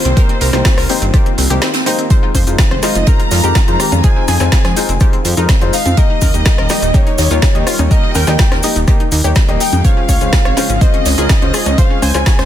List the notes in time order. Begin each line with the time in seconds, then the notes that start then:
Already playing: D#3 A#3 C4 G4 C5
0.05 C2 C4, closed hi-hat
0.17 A#3 D#4 F4 G4 A#4 C5, kick, closed hi-hat
0.29 C4, closed hi-hat
0.41 C2 A#4, closed hi-hat, open hi-hat
0.53 C2 A#3 C4 D#4 G4 C5, cross-stick, snare, closed hi-hat
0.65 C4, kick, snare, closed hi-hat
0.78 C2 A#4, cross-stick, snare, open hi-hat
0.89 A#3 C4 D#4 G4 C5, closed hi-hat, open hi-hat
1.02 G1 C4, closed hi-hat
1.13 A#3 D#4 G4 C5, kick, cross-stick, closed hi-hat
1.26 C4, closed hi-hat
1.38 C2 C4, closed hi-hat, open hi-hat
1.50 C2 A#3 D#4 G4 C5, closed hi-hat
1.61 C4, snare, closed hi-hat
1.73 C4, snare, closed hi-hat
1.86 A#3 D#4 G4 C5, closed hi-hat, open hi-hat
1.99 C4, closed hi-hat
2.10 G#3 D#4 F4 C5, kick, closed hi-hat, cabasa
2.23 F4
2.35 F2 C5, kick, closed hi-hat, open hi-hat, high conga, cabasa
2.47 F2 G#3 D#4 F4 C5, closed hi-hat, cabasa
2.58 F4, kick, snare, closed hi-hat, cabasa
2.71 F1 C5, cross-stick, high conga
2.83 G#3 D#4 F4 C5 D#5, snare, closed hi-hat, open hi-hat, cabasa
2.95 F1 F4, closed hi-hat, cabasa
3.06 G#3 D#4 F4 A#4 C5 A#5, kick, closed hi-hat, high conga, cabasa
3.19 F4, closed hi-hat
3.31 F2 F4, snare, closed hi-hat, open hi-hat, high bongo, cabasa
3.43 F2 G#3 D#4 F4 G4 A#4, closed hi-hat, cabasa
3.55 F4, kick, snare, closed hi-hat, high conga, cabasa
3.68 F2 G#3 D#4 F4 C5, closed hi-hat
3.79 G4, cross-stick, closed hi-hat, open hi-hat, cabasa
3.92 F2 F4, closed hi-hat, cowbell, high bongo, high conga, cabasa
4.03 G#3 D#4 F4 G#4 C5 G#5, kick, closed hi-hat, cabasa
4.16 C4
4.28 F2 G#4, closed hi-hat, open hi-hat, cowbell, high conga, cabasa
4.40 F2 G#3 C4 D#4 F4 C5, cross-stick, snare, closed hi-hat, cowbell, high bongo, cabasa
4.52 C4, kick, snare, closed hi-hat, cabasa
4.65 F2 G#4, cross-stick, snare, closed hi-hat, high conga
4.76 G#3 C4 D#4 F4 C5, closed hi-hat, open hi-hat, cabasa
4.89 F1 C4, closed hi-hat, cabasa
5.00 G#3 D#4 F4 G4 C5, kick, cross-stick, closed hi-hat, high conga, cabasa
5.13 C4, closed hi-hat
5.24 F2 C4, closed hi-hat, open hi-hat, cabasa
5.37 F2 G#3 D#4 F4 A#4, closed hi-hat, cabasa
5.48 C4, kick, snare, closed hi-hat, high conga, cabasa
5.61 F2 G#3 C4 D#4 F4 C5, closed hi-hat, high bongo
5.73 D#4 F5, closed hi-hat, open hi-hat, cabasa
5.86 F2 C4, closed hi-hat, high conga, cabasa
5.97 G3 A#3 D#4 G4 A#4 D#5, kick, closed hi-hat, cabasa
6.10 D#4
6.21 D#2 A#4, kick, closed hi-hat, open hi-hat, high conga, cabasa
6.34 D#2 A#3 D#4 G4 D#5, closed hi-hat, cabasa
6.45 D#4, kick, snare, closed hi-hat, cabasa
6.58 D#1 A#4, cross-stick, high conga
6.69 A#3 D#4 G4 D#5, snare, closed hi-hat, open hi-hat, cabasa
6.82 D#1 D#4, closed hi-hat, cabasa
6.94 A#3 D#4 G4 C#5 D#5, kick, closed hi-hat, high conga, cabasa
7.07 D#4, closed hi-hat
7.18 D#2 D#4, snare, closed hi-hat, open hi-hat, high bongo, cabasa
7.31 D#2 A#3 D#4 F4 G4 C#5, closed hi-hat, cabasa
7.42 D#4, kick, snare, closed hi-hat, high conga, cabasa
7.55 D#2 A#3 D#4 G4 D#5, closed hi-hat
7.67 F4, cross-stick, closed hi-hat, open hi-hat, cabasa
7.79 D#2 D#4, closed hi-hat, cowbell, high bongo, high conga, cabasa
7.91 A#3 D#4 G4 A#4 D#5, kick, closed hi-hat, cabasa
8.03 D#4
8.15 D#2 A#4 G5, closed hi-hat, open hi-hat, cowbell, high conga, cabasa
8.27 D#2 A#3 D#4 G4 D#5, cross-stick, snare, closed hi-hat, cowbell, high bongo, cabasa
8.39 D#4, kick, snare, closed hi-hat, cabasa
8.52 D#2 A#4, cross-stick, snare, closed hi-hat, high conga
8.63 A#3 D#4 G4 D#5, closed hi-hat, open hi-hat, cabasa
8.76 D#1 D#4, closed hi-hat, cabasa
8.87 A#3 D#4 G4 D#5, kick, cross-stick, closed hi-hat, high conga, cabasa
9.00 D#4, closed hi-hat
9.12 D#2 D#4, closed hi-hat, open hi-hat, cabasa
9.24 D#2 A#3 D#4 G4 C#5, closed hi-hat, cabasa
9.35 D#4, kick, snare, closed hi-hat, high conga, cabasa
9.48 D#1 A#3 D#4 G4 D#5, closed hi-hat, high bongo
9.60 D#4 G5, closed hi-hat, open hi-hat, cabasa
9.73 F2 D#4, closed hi-hat, high conga, cabasa
9.84 C#3 G#3 C4 C#4 F4 C5 C#5 F5, kick, closed hi-hat, cabasa
9.97 C#4
10.08 C#2 C#5, kick, closed hi-hat, open hi-hat, high conga, cabasa
10.21 C#2 G#3 C#4 F4 C5, closed hi-hat, cabasa
10.33 C#4, kick, snare, closed hi-hat, cabasa
10.45 G#1 C#5, cross-stick, high conga
10.57 G#3 C#4 F4 C5, snare, closed hi-hat, open hi-hat, cabasa
10.69 G#1 C#4, closed hi-hat, cabasa
10.81 G#3 C#4 F4 C5 D#5, kick, closed hi-hat, high conga, cabasa
10.93 C#4, closed hi-hat
11.05 C#2 C#4, snare, closed hi-hat, open hi-hat, high bongo, cabasa
11.18 C#2 G#3 C#4 F4 G#4 A#4, closed hi-hat, cabasa
11.29 C#4, kick, snare, closed hi-hat, high conga, cabasa
11.42 C#2 G#3 C#4 F4 C5, closed hi-hat
11.53 G#4, cross-stick, closed hi-hat, open hi-hat, cabasa
11.66 C#2 C#4, closed hi-hat, cowbell, high bongo, high conga, cabasa
11.78 G#3 C#4 F4 C5 F5, kick, closed hi-hat, cabasa
11.90 C#4
12.02 C#2 C5 G#5, closed hi-hat, open hi-hat, cowbell, high conga, cabasa
12.14 C#2 G#3 C#4 F4 C5, cross-stick, snare, closed hi-hat, cowbell, high bongo, cabasa
12.26 C#4, kick, snare, closed hi-hat, cabasa
12.39 C#2 C5, cross-stick, snare, closed hi-hat, high conga